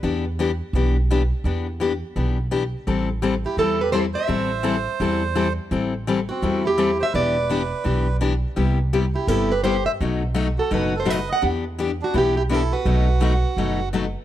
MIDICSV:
0, 0, Header, 1, 5, 480
1, 0, Start_track
1, 0, Key_signature, 1, "minor"
1, 0, Tempo, 356295
1, 43, Time_signature, 4, 2, 24, 8
1, 19194, End_track
2, 0, Start_track
2, 0, Title_t, "Steel-string acoustic guitar"
2, 0, Program_c, 0, 25
2, 4659, Note_on_c, 0, 67, 78
2, 4822, Note_off_c, 0, 67, 0
2, 4835, Note_on_c, 0, 69, 82
2, 5127, Note_off_c, 0, 69, 0
2, 5134, Note_on_c, 0, 71, 80
2, 5279, Note_off_c, 0, 71, 0
2, 5285, Note_on_c, 0, 72, 89
2, 5367, Note_off_c, 0, 72, 0
2, 5593, Note_on_c, 0, 76, 89
2, 6846, Note_off_c, 0, 76, 0
2, 6846, Note_on_c, 0, 74, 89
2, 7461, Note_off_c, 0, 74, 0
2, 8471, Note_on_c, 0, 66, 84
2, 8922, Note_off_c, 0, 66, 0
2, 8987, Note_on_c, 0, 67, 90
2, 9468, Note_off_c, 0, 67, 0
2, 9469, Note_on_c, 0, 76, 92
2, 9628, Note_off_c, 0, 76, 0
2, 9638, Note_on_c, 0, 74, 92
2, 11021, Note_off_c, 0, 74, 0
2, 12335, Note_on_c, 0, 67, 73
2, 12507, Note_off_c, 0, 67, 0
2, 12507, Note_on_c, 0, 69, 78
2, 12821, Note_on_c, 0, 71, 75
2, 12840, Note_off_c, 0, 69, 0
2, 12976, Note_off_c, 0, 71, 0
2, 12981, Note_on_c, 0, 72, 89
2, 13277, Note_off_c, 0, 72, 0
2, 13282, Note_on_c, 0, 76, 77
2, 13350, Note_off_c, 0, 76, 0
2, 14271, Note_on_c, 0, 69, 72
2, 14435, Note_off_c, 0, 69, 0
2, 14467, Note_on_c, 0, 71, 82
2, 14752, Note_off_c, 0, 71, 0
2, 14816, Note_on_c, 0, 72, 82
2, 14960, Note_off_c, 0, 72, 0
2, 14960, Note_on_c, 0, 75, 96
2, 15244, Note_off_c, 0, 75, 0
2, 15258, Note_on_c, 0, 78, 82
2, 15410, Note_off_c, 0, 78, 0
2, 16222, Note_on_c, 0, 66, 77
2, 16390, Note_off_c, 0, 66, 0
2, 16407, Note_on_c, 0, 67, 83
2, 16651, Note_off_c, 0, 67, 0
2, 16667, Note_on_c, 0, 67, 77
2, 16734, Note_off_c, 0, 67, 0
2, 16882, Note_on_c, 0, 69, 91
2, 17149, Note_on_c, 0, 71, 89
2, 17167, Note_off_c, 0, 69, 0
2, 18718, Note_off_c, 0, 71, 0
2, 19194, End_track
3, 0, Start_track
3, 0, Title_t, "Melodica"
3, 0, Program_c, 1, 22
3, 4651, Note_on_c, 1, 64, 64
3, 4800, Note_off_c, 1, 64, 0
3, 4820, Note_on_c, 1, 64, 71
3, 5119, Note_off_c, 1, 64, 0
3, 5149, Note_on_c, 1, 67, 71
3, 5283, Note_on_c, 1, 69, 71
3, 5295, Note_off_c, 1, 67, 0
3, 5421, Note_off_c, 1, 69, 0
3, 5570, Note_on_c, 1, 72, 92
3, 7450, Note_off_c, 1, 72, 0
3, 8491, Note_on_c, 1, 60, 75
3, 8932, Note_off_c, 1, 60, 0
3, 8946, Note_on_c, 1, 64, 84
3, 9400, Note_off_c, 1, 64, 0
3, 9427, Note_on_c, 1, 72, 86
3, 9601, Note_on_c, 1, 71, 77
3, 9606, Note_off_c, 1, 72, 0
3, 11003, Note_off_c, 1, 71, 0
3, 12319, Note_on_c, 1, 64, 65
3, 12490, Note_off_c, 1, 64, 0
3, 12510, Note_on_c, 1, 64, 75
3, 12808, Note_on_c, 1, 67, 69
3, 12832, Note_off_c, 1, 64, 0
3, 12969, Note_off_c, 1, 67, 0
3, 12998, Note_on_c, 1, 67, 72
3, 13271, Note_off_c, 1, 67, 0
3, 13276, Note_on_c, 1, 72, 72
3, 13362, Note_off_c, 1, 72, 0
3, 14251, Note_on_c, 1, 66, 64
3, 14424, Note_off_c, 1, 66, 0
3, 14457, Note_on_c, 1, 66, 70
3, 14746, Note_off_c, 1, 66, 0
3, 14765, Note_on_c, 1, 69, 71
3, 14911, Note_off_c, 1, 69, 0
3, 14915, Note_on_c, 1, 71, 75
3, 15209, Note_on_c, 1, 75, 78
3, 15213, Note_off_c, 1, 71, 0
3, 15384, Note_off_c, 1, 75, 0
3, 16187, Note_on_c, 1, 62, 65
3, 16355, Note_off_c, 1, 62, 0
3, 16364, Note_on_c, 1, 64, 78
3, 16635, Note_off_c, 1, 64, 0
3, 16655, Note_on_c, 1, 64, 74
3, 16739, Note_off_c, 1, 64, 0
3, 16851, Note_on_c, 1, 64, 80
3, 17137, Note_on_c, 1, 66, 83
3, 17143, Note_off_c, 1, 64, 0
3, 18712, Note_off_c, 1, 66, 0
3, 19194, End_track
4, 0, Start_track
4, 0, Title_t, "Steel-string acoustic guitar"
4, 0, Program_c, 2, 25
4, 39, Note_on_c, 2, 52, 65
4, 46, Note_on_c, 2, 59, 61
4, 50, Note_on_c, 2, 62, 73
4, 50, Note_on_c, 2, 67, 63
4, 322, Note_off_c, 2, 52, 0
4, 326, Note_off_c, 2, 59, 0
4, 328, Note_off_c, 2, 62, 0
4, 328, Note_off_c, 2, 67, 0
4, 526, Note_on_c, 2, 52, 80
4, 537, Note_on_c, 2, 59, 91
4, 538, Note_on_c, 2, 62, 84
4, 545, Note_on_c, 2, 67, 92
4, 672, Note_off_c, 2, 52, 0
4, 677, Note_off_c, 2, 59, 0
4, 678, Note_off_c, 2, 62, 0
4, 681, Note_off_c, 2, 67, 0
4, 1013, Note_on_c, 2, 59, 69
4, 1016, Note_on_c, 2, 52, 65
4, 1023, Note_on_c, 2, 62, 70
4, 1024, Note_on_c, 2, 67, 74
4, 1287, Note_off_c, 2, 59, 0
4, 1288, Note_off_c, 2, 52, 0
4, 1292, Note_off_c, 2, 62, 0
4, 1292, Note_off_c, 2, 67, 0
4, 1489, Note_on_c, 2, 52, 85
4, 1496, Note_on_c, 2, 59, 84
4, 1500, Note_on_c, 2, 62, 87
4, 1502, Note_on_c, 2, 67, 91
4, 1631, Note_off_c, 2, 52, 0
4, 1635, Note_off_c, 2, 59, 0
4, 1637, Note_off_c, 2, 62, 0
4, 1638, Note_off_c, 2, 67, 0
4, 1955, Note_on_c, 2, 52, 63
4, 1958, Note_on_c, 2, 62, 66
4, 1964, Note_on_c, 2, 67, 62
4, 1969, Note_on_c, 2, 59, 63
4, 2236, Note_off_c, 2, 52, 0
4, 2237, Note_off_c, 2, 62, 0
4, 2240, Note_off_c, 2, 67, 0
4, 2243, Note_off_c, 2, 59, 0
4, 2425, Note_on_c, 2, 52, 74
4, 2438, Note_on_c, 2, 59, 82
4, 2442, Note_on_c, 2, 67, 85
4, 2444, Note_on_c, 2, 62, 83
4, 2577, Note_off_c, 2, 52, 0
4, 2584, Note_off_c, 2, 59, 0
4, 2586, Note_off_c, 2, 67, 0
4, 2587, Note_off_c, 2, 62, 0
4, 2911, Note_on_c, 2, 59, 66
4, 2914, Note_on_c, 2, 52, 62
4, 2917, Note_on_c, 2, 62, 63
4, 2926, Note_on_c, 2, 67, 64
4, 3192, Note_off_c, 2, 59, 0
4, 3193, Note_off_c, 2, 52, 0
4, 3195, Note_off_c, 2, 62, 0
4, 3199, Note_off_c, 2, 67, 0
4, 3384, Note_on_c, 2, 59, 79
4, 3389, Note_on_c, 2, 52, 78
4, 3389, Note_on_c, 2, 62, 85
4, 3393, Note_on_c, 2, 67, 97
4, 3535, Note_off_c, 2, 59, 0
4, 3538, Note_off_c, 2, 52, 0
4, 3538, Note_off_c, 2, 62, 0
4, 3540, Note_off_c, 2, 67, 0
4, 3864, Note_on_c, 2, 52, 56
4, 3871, Note_on_c, 2, 55, 66
4, 3872, Note_on_c, 2, 60, 60
4, 3874, Note_on_c, 2, 64, 74
4, 3877, Note_on_c, 2, 69, 68
4, 4147, Note_off_c, 2, 52, 0
4, 4151, Note_off_c, 2, 55, 0
4, 4151, Note_off_c, 2, 60, 0
4, 4152, Note_off_c, 2, 64, 0
4, 4154, Note_off_c, 2, 69, 0
4, 4339, Note_on_c, 2, 55, 91
4, 4340, Note_on_c, 2, 52, 91
4, 4350, Note_on_c, 2, 60, 91
4, 4354, Note_on_c, 2, 64, 83
4, 4358, Note_on_c, 2, 69, 79
4, 4492, Note_off_c, 2, 52, 0
4, 4492, Note_off_c, 2, 55, 0
4, 4497, Note_off_c, 2, 60, 0
4, 4499, Note_off_c, 2, 64, 0
4, 4501, Note_off_c, 2, 69, 0
4, 4824, Note_on_c, 2, 52, 62
4, 4837, Note_on_c, 2, 64, 71
4, 4844, Note_on_c, 2, 55, 72
4, 4844, Note_on_c, 2, 60, 62
4, 4855, Note_on_c, 2, 69, 69
4, 5107, Note_off_c, 2, 52, 0
4, 5113, Note_off_c, 2, 64, 0
4, 5116, Note_off_c, 2, 60, 0
4, 5117, Note_off_c, 2, 55, 0
4, 5122, Note_off_c, 2, 69, 0
4, 5291, Note_on_c, 2, 55, 89
4, 5292, Note_on_c, 2, 52, 75
4, 5301, Note_on_c, 2, 60, 84
4, 5310, Note_on_c, 2, 69, 84
4, 5312, Note_on_c, 2, 64, 95
4, 5447, Note_off_c, 2, 52, 0
4, 5447, Note_off_c, 2, 55, 0
4, 5452, Note_off_c, 2, 60, 0
4, 5456, Note_off_c, 2, 69, 0
4, 5457, Note_off_c, 2, 64, 0
4, 5759, Note_on_c, 2, 55, 63
4, 5762, Note_on_c, 2, 52, 59
4, 5770, Note_on_c, 2, 60, 62
4, 5780, Note_on_c, 2, 64, 66
4, 5780, Note_on_c, 2, 69, 64
4, 6054, Note_off_c, 2, 55, 0
4, 6055, Note_off_c, 2, 52, 0
4, 6059, Note_off_c, 2, 60, 0
4, 6064, Note_off_c, 2, 64, 0
4, 6064, Note_off_c, 2, 69, 0
4, 6238, Note_on_c, 2, 52, 80
4, 6241, Note_on_c, 2, 55, 79
4, 6246, Note_on_c, 2, 60, 93
4, 6253, Note_on_c, 2, 64, 89
4, 6254, Note_on_c, 2, 69, 89
4, 6400, Note_off_c, 2, 52, 0
4, 6402, Note_off_c, 2, 55, 0
4, 6404, Note_off_c, 2, 60, 0
4, 6407, Note_off_c, 2, 64, 0
4, 6408, Note_off_c, 2, 69, 0
4, 6735, Note_on_c, 2, 52, 68
4, 6740, Note_on_c, 2, 55, 61
4, 6743, Note_on_c, 2, 64, 72
4, 6748, Note_on_c, 2, 60, 67
4, 6758, Note_on_c, 2, 69, 73
4, 7021, Note_off_c, 2, 52, 0
4, 7024, Note_off_c, 2, 55, 0
4, 7026, Note_off_c, 2, 64, 0
4, 7028, Note_off_c, 2, 60, 0
4, 7033, Note_off_c, 2, 69, 0
4, 7213, Note_on_c, 2, 52, 83
4, 7213, Note_on_c, 2, 60, 88
4, 7214, Note_on_c, 2, 55, 84
4, 7217, Note_on_c, 2, 64, 82
4, 7222, Note_on_c, 2, 69, 94
4, 7367, Note_off_c, 2, 52, 0
4, 7368, Note_off_c, 2, 55, 0
4, 7368, Note_off_c, 2, 60, 0
4, 7370, Note_off_c, 2, 64, 0
4, 7372, Note_off_c, 2, 69, 0
4, 7692, Note_on_c, 2, 52, 64
4, 7698, Note_on_c, 2, 55, 60
4, 7701, Note_on_c, 2, 60, 66
4, 7707, Note_on_c, 2, 64, 60
4, 7713, Note_on_c, 2, 69, 66
4, 7981, Note_off_c, 2, 52, 0
4, 7983, Note_off_c, 2, 55, 0
4, 7985, Note_off_c, 2, 60, 0
4, 7988, Note_off_c, 2, 64, 0
4, 7991, Note_off_c, 2, 69, 0
4, 8181, Note_on_c, 2, 52, 91
4, 8190, Note_on_c, 2, 60, 86
4, 8193, Note_on_c, 2, 55, 87
4, 8195, Note_on_c, 2, 64, 80
4, 8200, Note_on_c, 2, 69, 85
4, 8332, Note_off_c, 2, 52, 0
4, 8337, Note_off_c, 2, 60, 0
4, 8338, Note_off_c, 2, 55, 0
4, 8339, Note_off_c, 2, 64, 0
4, 8341, Note_off_c, 2, 69, 0
4, 8654, Note_on_c, 2, 52, 68
4, 8661, Note_on_c, 2, 55, 65
4, 8665, Note_on_c, 2, 60, 72
4, 8668, Note_on_c, 2, 64, 73
4, 8670, Note_on_c, 2, 69, 70
4, 8942, Note_off_c, 2, 52, 0
4, 8945, Note_off_c, 2, 55, 0
4, 8947, Note_off_c, 2, 60, 0
4, 8949, Note_off_c, 2, 64, 0
4, 8950, Note_off_c, 2, 69, 0
4, 9129, Note_on_c, 2, 52, 76
4, 9130, Note_on_c, 2, 55, 94
4, 9134, Note_on_c, 2, 60, 87
4, 9138, Note_on_c, 2, 69, 90
4, 9139, Note_on_c, 2, 64, 93
4, 9287, Note_off_c, 2, 52, 0
4, 9287, Note_off_c, 2, 55, 0
4, 9289, Note_off_c, 2, 60, 0
4, 9291, Note_off_c, 2, 69, 0
4, 9292, Note_off_c, 2, 64, 0
4, 9621, Note_on_c, 2, 52, 62
4, 9626, Note_on_c, 2, 62, 65
4, 9628, Note_on_c, 2, 59, 68
4, 9632, Note_on_c, 2, 67, 71
4, 9907, Note_off_c, 2, 52, 0
4, 9909, Note_off_c, 2, 62, 0
4, 9910, Note_off_c, 2, 59, 0
4, 9912, Note_off_c, 2, 67, 0
4, 10096, Note_on_c, 2, 52, 79
4, 10107, Note_on_c, 2, 59, 87
4, 10110, Note_on_c, 2, 62, 88
4, 10117, Note_on_c, 2, 67, 90
4, 10251, Note_off_c, 2, 52, 0
4, 10257, Note_off_c, 2, 59, 0
4, 10258, Note_off_c, 2, 62, 0
4, 10262, Note_off_c, 2, 67, 0
4, 10564, Note_on_c, 2, 52, 65
4, 10571, Note_on_c, 2, 59, 62
4, 10574, Note_on_c, 2, 62, 67
4, 10590, Note_on_c, 2, 67, 64
4, 10859, Note_off_c, 2, 52, 0
4, 10863, Note_off_c, 2, 59, 0
4, 10864, Note_off_c, 2, 62, 0
4, 10872, Note_off_c, 2, 67, 0
4, 11055, Note_on_c, 2, 59, 84
4, 11058, Note_on_c, 2, 52, 88
4, 11067, Note_on_c, 2, 62, 88
4, 11076, Note_on_c, 2, 67, 88
4, 11212, Note_off_c, 2, 59, 0
4, 11213, Note_off_c, 2, 52, 0
4, 11218, Note_off_c, 2, 62, 0
4, 11222, Note_off_c, 2, 67, 0
4, 11533, Note_on_c, 2, 55, 61
4, 11537, Note_on_c, 2, 48, 61
4, 11539, Note_on_c, 2, 59, 65
4, 11545, Note_on_c, 2, 64, 69
4, 11545, Note_on_c, 2, 67, 65
4, 11825, Note_off_c, 2, 55, 0
4, 11827, Note_off_c, 2, 48, 0
4, 11828, Note_off_c, 2, 59, 0
4, 11831, Note_off_c, 2, 64, 0
4, 11831, Note_off_c, 2, 67, 0
4, 12031, Note_on_c, 2, 48, 77
4, 12034, Note_on_c, 2, 55, 87
4, 12034, Note_on_c, 2, 64, 84
4, 12035, Note_on_c, 2, 59, 86
4, 12041, Note_on_c, 2, 67, 90
4, 12181, Note_off_c, 2, 48, 0
4, 12183, Note_off_c, 2, 55, 0
4, 12183, Note_off_c, 2, 59, 0
4, 12183, Note_off_c, 2, 64, 0
4, 12186, Note_off_c, 2, 67, 0
4, 12507, Note_on_c, 2, 48, 66
4, 12511, Note_on_c, 2, 59, 71
4, 12518, Note_on_c, 2, 55, 70
4, 12518, Note_on_c, 2, 64, 66
4, 12523, Note_on_c, 2, 67, 71
4, 12793, Note_off_c, 2, 48, 0
4, 12795, Note_off_c, 2, 59, 0
4, 12799, Note_off_c, 2, 55, 0
4, 12799, Note_off_c, 2, 64, 0
4, 12801, Note_off_c, 2, 67, 0
4, 12981, Note_on_c, 2, 48, 83
4, 12984, Note_on_c, 2, 55, 79
4, 12986, Note_on_c, 2, 64, 97
4, 12999, Note_on_c, 2, 59, 88
4, 12999, Note_on_c, 2, 67, 93
4, 13137, Note_off_c, 2, 48, 0
4, 13139, Note_off_c, 2, 55, 0
4, 13140, Note_off_c, 2, 64, 0
4, 13146, Note_off_c, 2, 59, 0
4, 13146, Note_off_c, 2, 67, 0
4, 13479, Note_on_c, 2, 47, 65
4, 13486, Note_on_c, 2, 54, 67
4, 13488, Note_on_c, 2, 57, 70
4, 13498, Note_on_c, 2, 63, 66
4, 13507, Note_on_c, 2, 66, 68
4, 13761, Note_off_c, 2, 47, 0
4, 13764, Note_off_c, 2, 54, 0
4, 13765, Note_off_c, 2, 57, 0
4, 13770, Note_off_c, 2, 63, 0
4, 13775, Note_off_c, 2, 66, 0
4, 13936, Note_on_c, 2, 47, 90
4, 13936, Note_on_c, 2, 54, 88
4, 13938, Note_on_c, 2, 57, 90
4, 13952, Note_on_c, 2, 63, 86
4, 13956, Note_on_c, 2, 66, 98
4, 14096, Note_off_c, 2, 47, 0
4, 14096, Note_off_c, 2, 54, 0
4, 14097, Note_off_c, 2, 57, 0
4, 14104, Note_off_c, 2, 63, 0
4, 14106, Note_off_c, 2, 66, 0
4, 14423, Note_on_c, 2, 47, 62
4, 14426, Note_on_c, 2, 57, 65
4, 14428, Note_on_c, 2, 54, 65
4, 14434, Note_on_c, 2, 63, 75
4, 14438, Note_on_c, 2, 66, 77
4, 14714, Note_off_c, 2, 47, 0
4, 14715, Note_off_c, 2, 57, 0
4, 14717, Note_off_c, 2, 54, 0
4, 14719, Note_off_c, 2, 63, 0
4, 14721, Note_off_c, 2, 66, 0
4, 14891, Note_on_c, 2, 47, 83
4, 14895, Note_on_c, 2, 54, 93
4, 14903, Note_on_c, 2, 63, 93
4, 14903, Note_on_c, 2, 66, 92
4, 14904, Note_on_c, 2, 57, 86
4, 15055, Note_off_c, 2, 47, 0
4, 15057, Note_off_c, 2, 54, 0
4, 15061, Note_off_c, 2, 57, 0
4, 15061, Note_off_c, 2, 63, 0
4, 15061, Note_off_c, 2, 66, 0
4, 15379, Note_on_c, 2, 52, 57
4, 15384, Note_on_c, 2, 62, 69
4, 15385, Note_on_c, 2, 59, 61
4, 15388, Note_on_c, 2, 67, 68
4, 15673, Note_off_c, 2, 52, 0
4, 15675, Note_off_c, 2, 62, 0
4, 15676, Note_off_c, 2, 59, 0
4, 15678, Note_off_c, 2, 67, 0
4, 15877, Note_on_c, 2, 52, 86
4, 15881, Note_on_c, 2, 59, 88
4, 15892, Note_on_c, 2, 67, 92
4, 15897, Note_on_c, 2, 62, 92
4, 16029, Note_off_c, 2, 52, 0
4, 16031, Note_off_c, 2, 59, 0
4, 16037, Note_off_c, 2, 67, 0
4, 16039, Note_off_c, 2, 62, 0
4, 16352, Note_on_c, 2, 52, 74
4, 16358, Note_on_c, 2, 59, 65
4, 16364, Note_on_c, 2, 62, 68
4, 16372, Note_on_c, 2, 67, 67
4, 16641, Note_off_c, 2, 52, 0
4, 16644, Note_off_c, 2, 59, 0
4, 16647, Note_off_c, 2, 62, 0
4, 16650, Note_off_c, 2, 67, 0
4, 16832, Note_on_c, 2, 52, 83
4, 16833, Note_on_c, 2, 59, 92
4, 16846, Note_on_c, 2, 62, 95
4, 16855, Note_on_c, 2, 67, 86
4, 16988, Note_off_c, 2, 52, 0
4, 16988, Note_off_c, 2, 59, 0
4, 16995, Note_off_c, 2, 62, 0
4, 16999, Note_off_c, 2, 67, 0
4, 17322, Note_on_c, 2, 47, 63
4, 17323, Note_on_c, 2, 54, 68
4, 17323, Note_on_c, 2, 57, 62
4, 17327, Note_on_c, 2, 63, 63
4, 17327, Note_on_c, 2, 66, 72
4, 17606, Note_off_c, 2, 47, 0
4, 17607, Note_off_c, 2, 54, 0
4, 17607, Note_off_c, 2, 57, 0
4, 17609, Note_off_c, 2, 63, 0
4, 17609, Note_off_c, 2, 66, 0
4, 17788, Note_on_c, 2, 47, 80
4, 17793, Note_on_c, 2, 63, 90
4, 17794, Note_on_c, 2, 54, 84
4, 17796, Note_on_c, 2, 57, 92
4, 17811, Note_on_c, 2, 66, 97
4, 17947, Note_off_c, 2, 47, 0
4, 17949, Note_off_c, 2, 54, 0
4, 17949, Note_off_c, 2, 63, 0
4, 17950, Note_off_c, 2, 57, 0
4, 17958, Note_off_c, 2, 66, 0
4, 18292, Note_on_c, 2, 47, 61
4, 18296, Note_on_c, 2, 57, 70
4, 18298, Note_on_c, 2, 66, 69
4, 18300, Note_on_c, 2, 54, 64
4, 18302, Note_on_c, 2, 63, 65
4, 18572, Note_off_c, 2, 47, 0
4, 18574, Note_off_c, 2, 57, 0
4, 18575, Note_off_c, 2, 66, 0
4, 18576, Note_off_c, 2, 54, 0
4, 18577, Note_off_c, 2, 63, 0
4, 18765, Note_on_c, 2, 47, 83
4, 18770, Note_on_c, 2, 54, 88
4, 18776, Note_on_c, 2, 63, 85
4, 18779, Note_on_c, 2, 57, 92
4, 18785, Note_on_c, 2, 66, 83
4, 18916, Note_off_c, 2, 47, 0
4, 18918, Note_off_c, 2, 54, 0
4, 18921, Note_off_c, 2, 63, 0
4, 18923, Note_off_c, 2, 57, 0
4, 18926, Note_off_c, 2, 66, 0
4, 19194, End_track
5, 0, Start_track
5, 0, Title_t, "Upright bass"
5, 0, Program_c, 3, 32
5, 40, Note_on_c, 3, 40, 93
5, 805, Note_off_c, 3, 40, 0
5, 987, Note_on_c, 3, 35, 90
5, 1756, Note_off_c, 3, 35, 0
5, 1942, Note_on_c, 3, 40, 88
5, 2712, Note_off_c, 3, 40, 0
5, 2907, Note_on_c, 3, 35, 85
5, 3674, Note_off_c, 3, 35, 0
5, 3867, Note_on_c, 3, 33, 88
5, 4633, Note_off_c, 3, 33, 0
5, 4809, Note_on_c, 3, 40, 82
5, 5582, Note_off_c, 3, 40, 0
5, 5778, Note_on_c, 3, 33, 92
5, 6548, Note_off_c, 3, 33, 0
5, 6735, Note_on_c, 3, 40, 85
5, 7506, Note_off_c, 3, 40, 0
5, 7694, Note_on_c, 3, 33, 85
5, 8466, Note_off_c, 3, 33, 0
5, 8655, Note_on_c, 3, 40, 85
5, 9428, Note_off_c, 3, 40, 0
5, 9618, Note_on_c, 3, 28, 87
5, 10391, Note_off_c, 3, 28, 0
5, 10578, Note_on_c, 3, 35, 86
5, 11352, Note_off_c, 3, 35, 0
5, 11543, Note_on_c, 3, 36, 96
5, 12316, Note_off_c, 3, 36, 0
5, 12494, Note_on_c, 3, 31, 89
5, 13272, Note_off_c, 3, 31, 0
5, 13479, Note_on_c, 3, 35, 93
5, 14247, Note_off_c, 3, 35, 0
5, 14431, Note_on_c, 3, 30, 80
5, 15204, Note_off_c, 3, 30, 0
5, 15396, Note_on_c, 3, 40, 88
5, 16167, Note_off_c, 3, 40, 0
5, 16358, Note_on_c, 3, 35, 85
5, 17129, Note_off_c, 3, 35, 0
5, 17317, Note_on_c, 3, 35, 93
5, 18089, Note_off_c, 3, 35, 0
5, 18277, Note_on_c, 3, 30, 80
5, 19050, Note_off_c, 3, 30, 0
5, 19194, End_track
0, 0, End_of_file